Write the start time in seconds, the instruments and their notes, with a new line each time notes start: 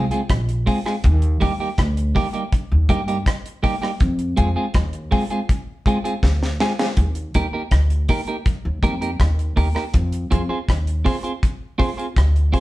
0.11 clean electric guitar G#3 C4 F4 G#4, closed hi-hat
0.29 upright bass A#1, kick, cross-stick, closed hi-hat
0.49 closed hi-hat
0.66 clean electric guitar G#3 C4 F4 G#4, kick, open hi-hat
0.86 clean electric guitar G#3 C4 F4 G#4, cross-stick
1.04 upright bass D#2, kick, closed hi-hat
1.22 closed hi-hat
1.40 upright bass D#2, clean electric guitar G3 A#3 D#4 G4, kick, open hi-hat
1.60 clean electric guitar G3 A#3 D#4 G4
1.78 upright bass D2, kick, cross-stick, closed hi-hat
1.97 closed hi-hat
2.15 clean electric guitar G3 A#3 D#4 G4, kick, open hi-hat
2.33 clean electric guitar G3 A#3 D#4 G4, closed hi-hat
2.52 kick, closed hi-hat
2.72 upright bass D#2
2.89 upright bass G2, clean electric guitar G3 A#3 D#4 G4, kick, closed hi-hat
3.08 clean electric guitar G3 A#3 D#4 G4, closed hi-hat
3.26 kick, cross-stick, closed hi-hat
3.46 closed hi-hat
3.63 clean electric guitar G3 A#3 D#4 G4, kick, open hi-hat
3.82 clean electric guitar G3 A#3 D#4 G4, cross-stick
4.00 upright bass F2, kick, closed hi-hat
4.19 closed hi-hat
4.37 upright bass F2, clean electric guitar G#3 C4 F4 G#4, kick, closed hi-hat
4.56 clean electric guitar G#3 C4 F4 G#4
4.74 upright bass D#2, kick, cross-stick, closed hi-hat
4.93 closed hi-hat
5.11 clean electric guitar G#3 C4 F4 G#4, kick, open hi-hat
5.30 clean electric guitar G#3 C4 F4 G#4, closed hi-hat
5.49 kick, closed hi-hat
5.86 clean electric guitar G#3 C4 F4 G#4, kick, closed hi-hat
6.04 clean electric guitar G#3 C4 F4 G#4, closed hi-hat
6.23 upright bass D2, kick, snare
6.43 snare
6.60 clean electric guitar G#3 C4 F4 G#4, snare
6.79 clean electric guitar G#3 C4 F4 G#4, snare
6.97 upright bass D#2, kick, closed hi-hat
7.15 closed hi-hat
7.34 upright bass D#2, clean electric guitar A#3 D#4 G4 A#4, kick, closed hi-hat
7.53 clean electric guitar A#3 D#4 G4 A#4
7.71 upright bass D2, kick, cross-stick, closed hi-hat
7.90 closed hi-hat
8.09 clean electric guitar A#3 D#4 G4 A#4, kick, open hi-hat
8.27 clean electric guitar A#3 D#4 G4 A#4, closed hi-hat
8.46 kick, closed hi-hat
8.65 upright bass D#2
8.83 upright bass F2, clean electric guitar A#3 D#4 G4 A#4, kick, closed hi-hat
9.01 clean electric guitar A#3 D#4 G4 A#4, closed hi-hat
9.20 upright bass D#2, kick, cross-stick, closed hi-hat
9.39 closed hi-hat
9.56 upright bass D#2, clean electric guitar A#3 D#4 G4 A#4, kick, open hi-hat
9.75 clean electric guitar A#3 D#4 G4 A#4, cross-stick
9.94 upright bass F2, kick, closed hi-hat
10.12 closed hi-hat
10.31 upright bass F2, clean electric guitar C4 F4 G#4 C5, kick, closed hi-hat
10.49 clean electric guitar C4 F4 G#4 C5
10.69 upright bass D#2, kick, cross-stick, closed hi-hat
10.87 closed hi-hat
11.05 clean electric guitar C4 F4 G#4 C5, kick, open hi-hat
11.23 clean electric guitar C4 F4 G#4 C5, closed hi-hat
11.43 kick, closed hi-hat
11.78 clean electric guitar C4 F4 G#4 C5, kick, open hi-hat
11.97 clean electric guitar C4 F4 G#4 C5, closed hi-hat
12.16 upright bass D2, kick, cross-stick, closed hi-hat
12.36 closed hi-hat
12.52 clean electric guitar C4 F4 G#4 C5, kick, open hi-hat